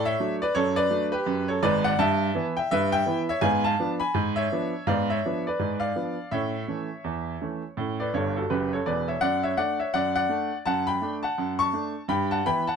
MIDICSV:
0, 0, Header, 1, 2, 480
1, 0, Start_track
1, 0, Key_signature, 2, "major"
1, 0, Tempo, 722022
1, 361, Time_signature, 2, 2, 24, 8
1, 8483, End_track
2, 0, Start_track
2, 0, Title_t, "Upright piano"
2, 0, Program_c, 0, 0
2, 0, Note_on_c, 0, 45, 88
2, 36, Note_on_c, 0, 76, 113
2, 43, Note_on_c, 0, 73, 76
2, 88, Note_off_c, 0, 45, 0
2, 130, Note_on_c, 0, 54, 53
2, 132, Note_on_c, 0, 57, 57
2, 133, Note_on_c, 0, 62, 52
2, 223, Note_off_c, 0, 76, 0
2, 257, Note_off_c, 0, 73, 0
2, 260, Note_off_c, 0, 54, 0
2, 261, Note_off_c, 0, 57, 0
2, 262, Note_off_c, 0, 62, 0
2, 278, Note_on_c, 0, 74, 98
2, 284, Note_on_c, 0, 71, 81
2, 363, Note_on_c, 0, 73, 116
2, 366, Note_off_c, 0, 71, 0
2, 369, Note_off_c, 0, 74, 0
2, 369, Note_on_c, 0, 42, 96
2, 373, Note_on_c, 0, 69, 86
2, 500, Note_off_c, 0, 69, 0
2, 504, Note_off_c, 0, 73, 0
2, 507, Note_on_c, 0, 74, 114
2, 510, Note_on_c, 0, 71, 81
2, 570, Note_off_c, 0, 42, 0
2, 597, Note_on_c, 0, 54, 53
2, 601, Note_on_c, 0, 57, 56
2, 605, Note_on_c, 0, 62, 67
2, 698, Note_off_c, 0, 74, 0
2, 730, Note_off_c, 0, 71, 0
2, 731, Note_off_c, 0, 54, 0
2, 733, Note_off_c, 0, 57, 0
2, 736, Note_off_c, 0, 62, 0
2, 744, Note_on_c, 0, 71, 96
2, 753, Note_on_c, 0, 67, 78
2, 839, Note_on_c, 0, 42, 90
2, 972, Note_off_c, 0, 67, 0
2, 972, Note_off_c, 0, 71, 0
2, 985, Note_on_c, 0, 73, 92
2, 994, Note_on_c, 0, 69, 72
2, 1044, Note_off_c, 0, 42, 0
2, 1080, Note_off_c, 0, 69, 0
2, 1081, Note_on_c, 0, 32, 88
2, 1081, Note_on_c, 0, 44, 91
2, 1081, Note_on_c, 0, 74, 110
2, 1082, Note_off_c, 0, 73, 0
2, 1092, Note_on_c, 0, 71, 89
2, 1219, Note_off_c, 0, 71, 0
2, 1223, Note_off_c, 0, 74, 0
2, 1226, Note_on_c, 0, 78, 110
2, 1234, Note_on_c, 0, 74, 81
2, 1273, Note_off_c, 0, 32, 0
2, 1273, Note_off_c, 0, 44, 0
2, 1320, Note_off_c, 0, 74, 0
2, 1321, Note_on_c, 0, 43, 110
2, 1322, Note_off_c, 0, 78, 0
2, 1322, Note_on_c, 0, 81, 127
2, 1332, Note_on_c, 0, 76, 102
2, 1524, Note_off_c, 0, 43, 0
2, 1560, Note_on_c, 0, 52, 70
2, 1565, Note_on_c, 0, 59, 62
2, 1568, Note_on_c, 0, 64, 66
2, 1626, Note_off_c, 0, 81, 0
2, 1681, Note_off_c, 0, 76, 0
2, 1692, Note_off_c, 0, 52, 0
2, 1695, Note_off_c, 0, 59, 0
2, 1697, Note_off_c, 0, 64, 0
2, 1706, Note_on_c, 0, 79, 98
2, 1719, Note_on_c, 0, 76, 72
2, 1793, Note_off_c, 0, 76, 0
2, 1802, Note_off_c, 0, 79, 0
2, 1803, Note_on_c, 0, 76, 127
2, 1806, Note_on_c, 0, 43, 95
2, 1813, Note_on_c, 0, 71, 89
2, 1938, Note_off_c, 0, 71, 0
2, 1943, Note_off_c, 0, 76, 0
2, 1944, Note_on_c, 0, 79, 126
2, 1953, Note_on_c, 0, 76, 90
2, 2007, Note_off_c, 0, 43, 0
2, 2034, Note_on_c, 0, 52, 51
2, 2038, Note_on_c, 0, 59, 58
2, 2041, Note_on_c, 0, 64, 67
2, 2134, Note_off_c, 0, 79, 0
2, 2167, Note_off_c, 0, 52, 0
2, 2170, Note_off_c, 0, 59, 0
2, 2170, Note_off_c, 0, 76, 0
2, 2172, Note_off_c, 0, 64, 0
2, 2188, Note_on_c, 0, 76, 109
2, 2195, Note_on_c, 0, 73, 86
2, 2269, Note_on_c, 0, 80, 117
2, 2271, Note_on_c, 0, 44, 101
2, 2279, Note_off_c, 0, 73, 0
2, 2279, Note_on_c, 0, 77, 96
2, 2282, Note_off_c, 0, 76, 0
2, 2285, Note_on_c, 0, 59, 64
2, 2411, Note_off_c, 0, 77, 0
2, 2415, Note_off_c, 0, 59, 0
2, 2415, Note_off_c, 0, 80, 0
2, 2422, Note_on_c, 0, 81, 118
2, 2432, Note_on_c, 0, 77, 91
2, 2478, Note_off_c, 0, 44, 0
2, 2523, Note_on_c, 0, 53, 55
2, 2524, Note_on_c, 0, 59, 54
2, 2525, Note_on_c, 0, 62, 67
2, 2613, Note_off_c, 0, 81, 0
2, 2649, Note_off_c, 0, 77, 0
2, 2653, Note_off_c, 0, 53, 0
2, 2655, Note_off_c, 0, 59, 0
2, 2655, Note_off_c, 0, 62, 0
2, 2657, Note_on_c, 0, 83, 104
2, 2663, Note_on_c, 0, 80, 81
2, 2755, Note_on_c, 0, 44, 94
2, 2850, Note_off_c, 0, 83, 0
2, 2885, Note_off_c, 0, 80, 0
2, 2897, Note_on_c, 0, 76, 104
2, 2907, Note_on_c, 0, 73, 84
2, 2960, Note_off_c, 0, 44, 0
2, 3006, Note_on_c, 0, 53, 55
2, 3008, Note_on_c, 0, 59, 52
2, 3011, Note_on_c, 0, 62, 61
2, 3136, Note_off_c, 0, 53, 0
2, 3137, Note_off_c, 0, 59, 0
2, 3139, Note_off_c, 0, 62, 0
2, 3218, Note_off_c, 0, 73, 0
2, 3219, Note_off_c, 0, 76, 0
2, 3237, Note_on_c, 0, 44, 91
2, 3237, Note_on_c, 0, 77, 101
2, 3244, Note_on_c, 0, 74, 71
2, 3250, Note_on_c, 0, 59, 54
2, 3373, Note_off_c, 0, 74, 0
2, 3378, Note_off_c, 0, 59, 0
2, 3380, Note_off_c, 0, 77, 0
2, 3390, Note_on_c, 0, 76, 96
2, 3400, Note_on_c, 0, 73, 76
2, 3441, Note_off_c, 0, 44, 0
2, 3492, Note_on_c, 0, 53, 53
2, 3492, Note_on_c, 0, 62, 53
2, 3496, Note_on_c, 0, 59, 50
2, 3613, Note_off_c, 0, 76, 0
2, 3614, Note_off_c, 0, 73, 0
2, 3620, Note_off_c, 0, 53, 0
2, 3621, Note_off_c, 0, 62, 0
2, 3623, Note_off_c, 0, 59, 0
2, 3636, Note_on_c, 0, 74, 81
2, 3644, Note_on_c, 0, 71, 65
2, 3719, Note_on_c, 0, 44, 73
2, 3850, Note_off_c, 0, 74, 0
2, 3854, Note_on_c, 0, 77, 101
2, 3856, Note_off_c, 0, 71, 0
2, 3860, Note_on_c, 0, 74, 69
2, 3923, Note_off_c, 0, 44, 0
2, 3959, Note_on_c, 0, 53, 42
2, 3961, Note_on_c, 0, 59, 42
2, 3964, Note_on_c, 0, 62, 47
2, 4091, Note_off_c, 0, 53, 0
2, 4092, Note_off_c, 0, 59, 0
2, 4094, Note_off_c, 0, 62, 0
2, 4175, Note_off_c, 0, 74, 0
2, 4179, Note_off_c, 0, 77, 0
2, 4197, Note_on_c, 0, 76, 92
2, 4199, Note_on_c, 0, 45, 75
2, 4210, Note_on_c, 0, 73, 65
2, 4214, Note_on_c, 0, 61, 47
2, 4342, Note_off_c, 0, 61, 0
2, 4403, Note_off_c, 0, 45, 0
2, 4442, Note_on_c, 0, 52, 38
2, 4443, Note_on_c, 0, 57, 46
2, 4444, Note_on_c, 0, 61, 46
2, 4574, Note_off_c, 0, 52, 0
2, 4574, Note_off_c, 0, 57, 0
2, 4575, Note_off_c, 0, 61, 0
2, 4682, Note_on_c, 0, 40, 70
2, 4886, Note_off_c, 0, 40, 0
2, 4928, Note_on_c, 0, 52, 39
2, 4930, Note_on_c, 0, 57, 44
2, 4933, Note_on_c, 0, 61, 43
2, 5059, Note_off_c, 0, 52, 0
2, 5061, Note_off_c, 0, 57, 0
2, 5063, Note_off_c, 0, 61, 0
2, 5083, Note_off_c, 0, 76, 0
2, 5166, Note_on_c, 0, 45, 78
2, 5180, Note_on_c, 0, 61, 43
2, 5284, Note_off_c, 0, 73, 0
2, 5308, Note_off_c, 0, 61, 0
2, 5317, Note_on_c, 0, 74, 75
2, 5325, Note_on_c, 0, 71, 61
2, 5370, Note_off_c, 0, 45, 0
2, 5407, Note_off_c, 0, 71, 0
2, 5409, Note_on_c, 0, 43, 66
2, 5410, Note_off_c, 0, 74, 0
2, 5411, Note_on_c, 0, 31, 69
2, 5412, Note_on_c, 0, 73, 82
2, 5418, Note_on_c, 0, 69, 60
2, 5544, Note_off_c, 0, 69, 0
2, 5550, Note_off_c, 0, 73, 0
2, 5559, Note_on_c, 0, 69, 70
2, 5569, Note_on_c, 0, 66, 52
2, 5588, Note_off_c, 0, 43, 0
2, 5589, Note_off_c, 0, 31, 0
2, 5650, Note_off_c, 0, 66, 0
2, 5650, Note_on_c, 0, 30, 69
2, 5651, Note_off_c, 0, 69, 0
2, 5651, Note_on_c, 0, 42, 70
2, 5652, Note_on_c, 0, 71, 80
2, 5657, Note_on_c, 0, 67, 65
2, 5784, Note_off_c, 0, 67, 0
2, 5791, Note_off_c, 0, 71, 0
2, 5803, Note_on_c, 0, 73, 74
2, 5810, Note_on_c, 0, 69, 60
2, 5829, Note_off_c, 0, 30, 0
2, 5830, Note_off_c, 0, 42, 0
2, 5891, Note_off_c, 0, 69, 0
2, 5891, Note_on_c, 0, 28, 62
2, 5891, Note_on_c, 0, 40, 65
2, 5891, Note_on_c, 0, 74, 79
2, 5894, Note_off_c, 0, 73, 0
2, 5899, Note_on_c, 0, 71, 61
2, 6026, Note_off_c, 0, 71, 0
2, 6031, Note_off_c, 0, 74, 0
2, 6037, Note_on_c, 0, 76, 78
2, 6041, Note_on_c, 0, 73, 61
2, 6070, Note_off_c, 0, 28, 0
2, 6070, Note_off_c, 0, 40, 0
2, 6122, Note_on_c, 0, 78, 105
2, 6125, Note_on_c, 0, 42, 83
2, 6127, Note_off_c, 0, 73, 0
2, 6131, Note_off_c, 0, 76, 0
2, 6131, Note_on_c, 0, 74, 77
2, 6261, Note_off_c, 0, 74, 0
2, 6267, Note_off_c, 0, 78, 0
2, 6271, Note_on_c, 0, 76, 89
2, 6282, Note_on_c, 0, 73, 74
2, 6330, Note_off_c, 0, 42, 0
2, 6365, Note_on_c, 0, 78, 96
2, 6368, Note_off_c, 0, 73, 0
2, 6368, Note_off_c, 0, 76, 0
2, 6368, Note_on_c, 0, 57, 45
2, 6369, Note_on_c, 0, 62, 50
2, 6373, Note_on_c, 0, 74, 71
2, 6500, Note_off_c, 0, 57, 0
2, 6500, Note_off_c, 0, 62, 0
2, 6502, Note_off_c, 0, 74, 0
2, 6508, Note_off_c, 0, 78, 0
2, 6512, Note_on_c, 0, 76, 83
2, 6520, Note_on_c, 0, 73, 63
2, 6606, Note_on_c, 0, 78, 104
2, 6607, Note_off_c, 0, 73, 0
2, 6608, Note_on_c, 0, 42, 79
2, 6609, Note_off_c, 0, 76, 0
2, 6617, Note_on_c, 0, 74, 82
2, 6741, Note_off_c, 0, 78, 0
2, 6745, Note_off_c, 0, 74, 0
2, 6751, Note_on_c, 0, 78, 104
2, 6759, Note_on_c, 0, 74, 74
2, 6812, Note_off_c, 0, 42, 0
2, 6844, Note_on_c, 0, 57, 52
2, 6847, Note_on_c, 0, 62, 54
2, 6977, Note_off_c, 0, 57, 0
2, 6979, Note_off_c, 0, 62, 0
2, 7021, Note_off_c, 0, 78, 0
2, 7069, Note_off_c, 0, 74, 0
2, 7084, Note_on_c, 0, 81, 108
2, 7087, Note_on_c, 0, 42, 90
2, 7092, Note_on_c, 0, 78, 88
2, 7222, Note_off_c, 0, 78, 0
2, 7225, Note_on_c, 0, 83, 107
2, 7227, Note_off_c, 0, 81, 0
2, 7234, Note_on_c, 0, 79, 76
2, 7291, Note_off_c, 0, 42, 0
2, 7324, Note_on_c, 0, 57, 53
2, 7327, Note_on_c, 0, 62, 58
2, 7418, Note_off_c, 0, 83, 0
2, 7454, Note_off_c, 0, 79, 0
2, 7457, Note_off_c, 0, 57, 0
2, 7459, Note_off_c, 0, 62, 0
2, 7464, Note_on_c, 0, 81, 93
2, 7473, Note_on_c, 0, 78, 73
2, 7565, Note_on_c, 0, 42, 75
2, 7657, Note_off_c, 0, 81, 0
2, 7694, Note_off_c, 0, 78, 0
2, 7704, Note_on_c, 0, 85, 117
2, 7712, Note_on_c, 0, 81, 79
2, 7770, Note_off_c, 0, 42, 0
2, 7801, Note_on_c, 0, 57, 50
2, 7804, Note_on_c, 0, 62, 57
2, 7934, Note_off_c, 0, 57, 0
2, 7936, Note_off_c, 0, 62, 0
2, 7976, Note_off_c, 0, 85, 0
2, 8024, Note_off_c, 0, 81, 0
2, 8033, Note_on_c, 0, 43, 92
2, 8036, Note_on_c, 0, 83, 105
2, 8044, Note_on_c, 0, 79, 80
2, 8177, Note_off_c, 0, 79, 0
2, 8183, Note_off_c, 0, 83, 0
2, 8184, Note_on_c, 0, 81, 101
2, 8191, Note_on_c, 0, 78, 75
2, 8242, Note_off_c, 0, 43, 0
2, 8280, Note_off_c, 0, 78, 0
2, 8281, Note_on_c, 0, 52, 61
2, 8284, Note_off_c, 0, 81, 0
2, 8284, Note_on_c, 0, 83, 114
2, 8285, Note_on_c, 0, 59, 62
2, 8287, Note_on_c, 0, 64, 65
2, 8289, Note_on_c, 0, 79, 86
2, 8414, Note_off_c, 0, 52, 0
2, 8417, Note_off_c, 0, 59, 0
2, 8418, Note_off_c, 0, 64, 0
2, 8419, Note_off_c, 0, 79, 0
2, 8426, Note_off_c, 0, 83, 0
2, 8426, Note_on_c, 0, 81, 96
2, 8434, Note_on_c, 0, 78, 76
2, 8483, Note_off_c, 0, 78, 0
2, 8483, Note_off_c, 0, 81, 0
2, 8483, End_track
0, 0, End_of_file